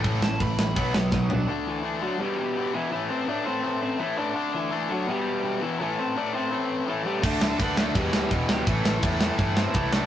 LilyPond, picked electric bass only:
\new Staff \with { instrumentName = "Picked electric bass" } { \clef bass \time 4/4 \key a \dorian \tempo 4 = 167 a,,8 a,,8 a,,4 b,,8 b,,8 b,,4 | r1 | r1 | r1 |
r1 | d,8 d,8 d,8 d,8 e,,8 d,8 e,,8 d,8 | a,,8 a,,8 e,4 g,4 c,4 | }